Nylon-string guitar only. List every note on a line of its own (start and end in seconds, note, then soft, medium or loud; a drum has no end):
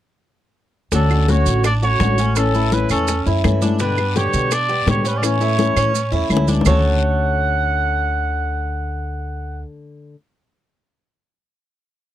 0.92 1.09 D3 medium
0.92 1.10 A3 medium
0.92 1.10 C#4 medium
0.92 1.09 F#4 medium
1.10 1.28 A3 soft
1.10 1.28 C#4 soft
1.10 1.28 F#4 soft
1.28 1.64 D3 medium
1.28 1.64 A3 medium
1.28 1.64 C#4 medium
1.28 1.65 F#4 medium
1.65 muted nylon-string guitar stroke medium
1.82 1.99 A3 soft
1.82 2.00 C#4 soft
1.82 2.00 F#4 soft
2.00 2.17 D3 medium
2.00 2.18 A3 medium
2.00 2.18 C#4 medium
2.00 2.17 F#4 medium
2.18 2.36 A3 soft
2.18 2.36 C#4 soft
2.18 2.36 F#4 soft
2.36 2.54 E3 medium
2.36 2.54 A3 medium
2.36 2.54 C#4 medium
2.36 2.53 E4 medium
2.54 2.71 A3 soft
2.54 2.72 C#4 soft
2.54 2.72 E4 soft
2.72 3.07 E3 medium
2.72 3.08 A3 medium
2.72 3.08 C#4 medium
2.72 3.08 E4 medium
3.08 muted nylon-string guitar stroke medium
3.26 3.43 A3 soft
3.26 3.44 C#4 soft
3.26 3.43 E4 soft
3.44 3.61 E3 medium
3.44 3.62 A3 medium
3.44 3.61 C#4 medium
3.44 3.61 E4 medium
3.62 3.80 A3 soft
3.62 3.80 C#4 soft
3.62 3.79 E4 soft
3.80 3.97 B2 medium
3.80 3.97 D3 medium
3.80 3.98 G3 medium
3.80 3.98 B3 medium
3.80 3.97 G4 medium
3.98 4.16 G3 soft
3.98 4.16 B3 soft
3.98 4.15 G4 soft
4.16 4.50 B2 medium
4.16 4.51 D3 medium
4.16 4.51 G3 medium
4.16 4.52 B3 medium
4.16 4.51 G4 medium
4.51 muted nylon-string guitar stroke medium
4.69 4.86 G3 soft
4.69 4.86 B3 soft
4.69 4.86 G4 soft
4.86 5.04 B2 medium
4.86 5.04 D3 medium
4.86 5.05 G3 medium
4.86 5.03 B3 medium
4.86 5.03 G4 medium
5.04 5.22 G3 soft
5.04 5.22 B3 soft
5.04 5.22 G4 soft
5.22 5.40 E3 medium
5.22 5.40 A3 medium
5.22 5.40 C#4 medium
5.22 5.39 E4 medium
5.40 5.57 A3 soft
5.40 5.57 C#4 soft
5.40 5.58 E4 soft
5.58 5.93 E3 medium
5.58 5.93 A3 medium
5.58 5.93 C#4 medium
5.58 5.93 E4 medium
5.94 muted nylon-string guitar stroke medium
6.12 6.30 A3 soft
6.12 6.30 C#4 soft
6.12 6.30 E4 soft
6.30 6.48 E3 medium
6.30 6.48 A3 medium
6.30 6.47 C#4 medium
6.30 6.46 E4 medium
6.47 6.64 A3 soft
6.47 6.65 C#4 soft
6.47 6.65 E4 soft
6.64 10.14 D3 medium
6.64 10.16 A3 medium
6.64 10.16 C#4 medium
6.64 10.17 F#4 medium